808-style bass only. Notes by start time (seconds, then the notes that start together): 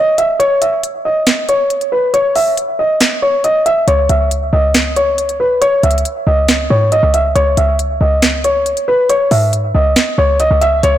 3.88 C#2
4.09 C#2
4.53 C#2
5.83 C#2
6.27 C#2
6.70 G#2
7.03 C#2
7.35 C#2
7.57 C#2
8.01 C#2
9.31 G#2
9.75 C#2
10.18 C#2
10.51 C#2
10.83 C#2